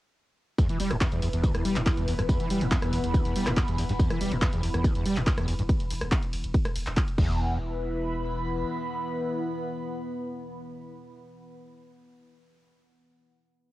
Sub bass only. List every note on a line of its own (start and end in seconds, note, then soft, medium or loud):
0.80 0.90 E1 loud
0.91 1.01 E1 medium
1.22 1.33 E1 medium
1.33 1.44 E1 medium
1.65 1.75 E1 loud
1.76 1.86 E1 medium
2.08 2.18 E1 loud
2.18 2.29 E1 medium
2.50 2.60 E1 loud
2.61 2.71 E1 medium
2.93 3.03 E1 loud
3.03 3.14 E1 medium
3.35 3.45 E1 loud
3.46 3.56 E1 medium
3.78 3.88 E1 loud
3.89 3.99 E1 medium
4.20 4.31 E1 loud
4.31 4.41 E1 medium
4.63 4.73 E1 loud
4.74 4.84 E1 medium
5.05 5.16 E1 loud
5.16 5.27 E1 medium
5.48 5.58 E1 loud
5.59 5.69 E1 medium
5.91 6.01 E1 loud
6.02 6.12 E1 medium
6.33 6.43 E1 loud
6.44 6.54 E1 medium
6.76 6.86 E1 loud
6.87 6.97 E1 medium
7.18 8.63 E1 medium